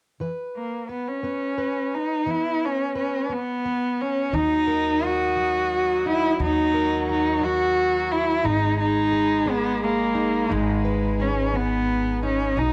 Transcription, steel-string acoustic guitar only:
0.20 0.82 E3 medium
0.20 0.89 B4 soft
0.89 1.24 B4 soft
1.23 1.85 B3 soft
1.23 1.57 B4 soft
1.58 2.23 B4 medium
2.26 2.88 E3 medium
2.26 3.28 B3 soft
2.95 4.29 B4 soft
3.29 3.64 B3 soft
3.65 4.33 B3 soft
4.33 4.95 D#3 medium
4.33 5.02 D#4 medium
4.67 6.74 A#4 medium
5.03 6.05 D#4 medium
5.36 5.99 F#3 medium
6.06 6.40 D#4 medium
6.39 7.01 D#3 medium
6.39 8.44 D#4 medium
6.74 8.47 A#4 medium
7.09 8.41 F#4 medium
7.41 8.03 F#3 medium
8.43 9.06 G#2 medium
8.43 10.14 D#4 medium
8.78 9.12 G#4 medium
9.12 10.46 G#4 medium
9.46 10.09 B3 medium
10.15 10.49 D#4 medium
10.49 11.12 G#2 medium
10.49 12.23 D#4 medium
10.85 12.73 B4 medium
11.20 12.53 G#4 medium
11.54 12.16 B3 medium
12.23 12.56 D#4 medium
12.56 12.73 B2 medium
12.56 12.73 D#4 medium

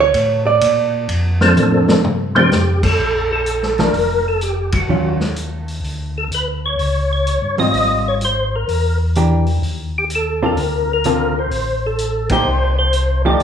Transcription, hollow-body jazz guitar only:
0.00 0.44 C#5 loud
0.47 1.06 D5 medium
3.79 3.93 F3 medium
3.79 3.94 A3 medium
3.79 3.94 D4 medium
4.89 5.18 D#3 medium
4.89 5.18 F#3 medium
4.89 5.18 C#4 medium
4.89 5.18 F4 medium
7.58 8.18 G3 medium
7.58 8.19 C4 medium
7.58 8.19 F4 medium
9.16 9.44 E3 medium
9.16 9.45 D4 medium
9.16 9.45 G4 medium
9.16 9.45 A#4 medium
10.43 10.57 D3 medium
10.43 10.57 C4 medium
10.43 10.57 F4 medium
10.43 10.57 A4 medium
11.05 11.33 D3 medium
11.05 11.34 C4 medium
11.05 11.34 F4 medium
11.05 11.34 A4 medium
12.31 12.45 A#3 medium
12.31 12.46 D#4 medium
12.31 12.46 G4 medium
13.25 13.39 F3 medium
13.25 13.40 A3 medium
13.25 13.40 D#4 medium
13.25 13.40 G4 medium

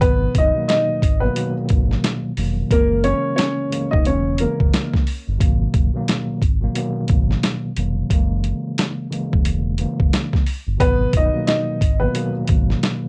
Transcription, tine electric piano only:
0.00 0.50 B2 medium
0.00 0.50 D#3 medium
0.00 0.51 F#3 medium
0.00 0.51 B3 loud
0.54 0.99 B2 medium
0.54 0.99 D#3 medium
0.54 1.00 F#3 medium
0.54 1.00 A#3 loud
1.21 1.33 B2 medium
1.21 1.35 D#3 medium
1.21 1.36 F#3 medium
1.21 1.36 A#3 loud
1.35 2.30 B2 medium
1.35 2.31 D#3 medium
1.35 2.31 F#3 medium
1.35 2.32 A#3 medium
2.36 2.68 B2 medium
2.36 2.69 D#3 medium
2.36 2.69 F#3 medium
2.36 2.70 A#3 medium
2.71 3.66 C#3 loud
2.71 3.66 E3 medium
2.71 3.67 G#3 medium
2.71 3.67 A#3 loud
3.70 4.34 C#3 medium
3.70 4.35 E3 medium
3.70 4.35 G#3 medium
3.70 4.36 A#3 loud
4.39 5.02 C#3 medium
4.39 5.03 E3 medium
4.39 5.03 G#3 medium
4.39 5.04 A#3 medium
5.38 5.89 B2 medium
5.38 5.89 D#3 medium
5.38 5.90 F#3 medium
5.38 5.90 A#3 loud
5.94 6.38 B2 medium
5.94 6.39 D#3 medium
5.94 6.39 F#3 medium
5.94 6.39 A#3 loud
6.61 6.73 B2 medium
6.61 6.74 D#3 medium
6.61 6.75 F#3 medium
6.61 6.76 A#3 loud
6.75 7.70 B2 medium
6.75 7.70 D#3 medium
6.75 7.71 F#3 medium
6.75 7.71 A#3 medium
7.76 8.08 B2 medium
7.76 8.09 D#3 medium
7.76 8.09 F#3 medium
7.76 8.09 A#3 medium
8.11 9.05 C#3 loud
8.11 9.06 E3 medium
8.11 9.06 G#3 medium
8.11 9.07 A#3 loud
9.10 9.74 C#3 medium
9.10 9.74 E3 medium
9.10 9.75 G#3 medium
9.10 9.75 A#3 loud
9.78 10.42 C#3 medium
9.78 10.42 E3 medium
9.78 10.43 G#3 medium
9.78 10.43 A#3 loud
10.78 11.28 B2 medium
10.78 11.29 D#3 medium
10.78 11.29 F#3 medium
10.78 11.30 B3 loud
11.33 11.77 B2 medium
11.33 11.78 D#3 medium
11.33 11.78 F#3 medium
11.33 11.79 A#3 loud
12.00 12.13 B2 medium
12.00 12.14 D#3 medium
12.00 12.15 F#3 medium
12.00 12.16 A#3 loud
12.14 13.09 B2 medium
12.14 13.09 D#3 medium
12.14 13.09 F#3 medium
12.14 13.09 A#3 loud

